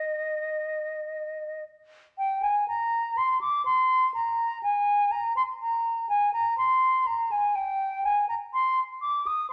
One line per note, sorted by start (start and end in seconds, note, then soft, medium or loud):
0.00 1.63 D#5 medium
2.18 2.41 G5 medium
2.42 2.67 G#5 medium
2.68 3.19 A#5 medium
3.17 3.41 C6 medium
3.41 3.65 D6 medium
3.65 4.13 C6 medium
4.14 4.62 A#5 medium
4.63 5.13 G#5 medium
5.12 5.36 A#5 medium
5.37 5.42 C6 medium
5.62 6.09 A#5 medium
6.09 6.33 G#5 medium
6.33 6.57 A#5 medium
6.58 7.08 C6 medium
7.07 7.33 A#5 medium
7.31 7.57 G#5 medium
7.55 8.03 G5 medium
8.04 8.28 G#5 medium
8.29 8.35 A#5 medium
8.54 8.80 C6 medium
9.02 9.28 D6 medium
9.27 9.49 D#6 medium